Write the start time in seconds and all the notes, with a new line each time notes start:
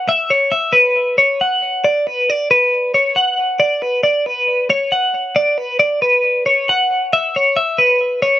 0.09 E5
0.30 C#5
0.52 E5
0.73 B4
1.18 C#5
1.41 F#5
1.84 D5
2.07 B4
2.30 D5
2.51 B4
2.94 C#5
3.16 F#5
3.60 D5
3.82 B4
4.03 D5
4.26 B4
4.70 C#5
4.92 F#5
5.36 D5
5.58 B4
5.79 D5
6.02 B4
6.46 C#5
6.69 F#5
7.13 E5
7.36 C#5
7.57 E5
7.78 B4
8.22 C#5